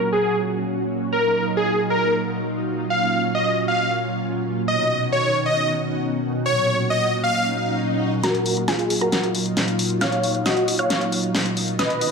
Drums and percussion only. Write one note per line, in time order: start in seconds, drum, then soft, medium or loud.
8.23 snare soft
8.23 closed hi-hat medium
8.35 closed hi-hat soft
8.46 open hi-hat loud
8.57 closed hi-hat soft
8.68 snare soft
8.68 closed hi-hat medium
8.79 closed hi-hat soft
8.90 open hi-hat loud
9.01 closed hi-hat soft
9.12 snare soft
9.12 closed hi-hat medium
9.23 closed hi-hat soft
9.35 open hi-hat loud
9.46 closed hi-hat soft
9.57 snare soft
9.57 closed hi-hat medium
9.68 closed hi-hat soft
9.79 open hi-hat medium
9.90 closed hi-hat soft
10.01 snare soft
10.01 closed hi-hat medium
10.12 closed hi-hat soft
10.23 open hi-hat loud
10.35 closed hi-hat soft
10.46 snare medium
10.46 closed hi-hat medium
10.57 closed hi-hat soft
10.68 open hi-hat loud
10.79 closed hi-hat soft
10.90 snare medium
10.90 closed hi-hat medium
11.01 closed hi-hat soft
11.12 open hi-hat loud
11.24 closed hi-hat soft
11.35 snare medium
11.35 open hi-hat medium
11.46 closed hi-hat soft
11.57 open hi-hat loud
11.68 closed hi-hat soft
11.79 snare medium
11.79 closed hi-hat medium
11.90 closed hi-hat soft
12.01 open hi-hat loud